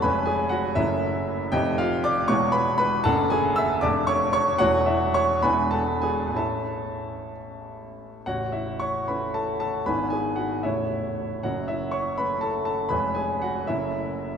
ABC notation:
X:1
M:6/8
L:1/8
Q:3/8=78
K:A
V:1 name="Grand piano"
[Bgb] [Gg] [Ff] [Ee]3 | [=G_e=g] [=F=f] [dd'] [cc'] [Bb] [Bb] | [Afa] [Gg] [ee'] [dad'] [cc'] [cc'] | [Fcf] [Ee] [cc'] [Bgb] [Aa] [Gg] |
[Aea]3 z3 | [Fcf] [Ee] [cc'] [Bb] [Aa] [Aa] | [Bgb] [Gg] [Ff] [Ece]3 | [Fcf] [Ee] [cc'] [Bb] [Aa] [Aa] |
[Bgb] [Gg] [Ff] [Ee]3 |]
V:2 name="Grand piano" clef=bass
[^E,,,^E,,G,C]3 [F,,,F,,F,A,C]3 | [=F,,,=F,,A,=C_E]3 [=E,,,E,,G,B,=E]3 | [F,,,F,,A,D]3 [=F,,,=F,,A,DA]3 | [E,,,E,,A,CE]3 [E,,,E,,G,DE]3 |
[A,,,A,CE]6 | [A,,,,A,,,]3 [A,CE]3 | [G,,,G,,B,DE]3 [A,,,,A,,,A,C]3 | [F,,,F,,]3 [A,C]3 |
[^E,,,^E,,G,C]3 [F,,,F,,A,C]3 |]